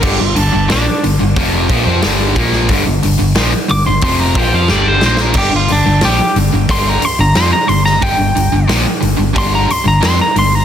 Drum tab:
CC |x---------------|----------------|x---------------|----------------|
HH |--o-o-o-o-o-o-o-|o-o-o-o-o-o-----|--o-o-o-o-o-o-o-|o-o-o-o-o-o-o-o-|
SD |----o-------o--o|----o-------o-oo|----o-------o--o|----o-------o---|
BD |o-------o-o---o-|o-------o-o-----|o-------o-------|o-------o-------|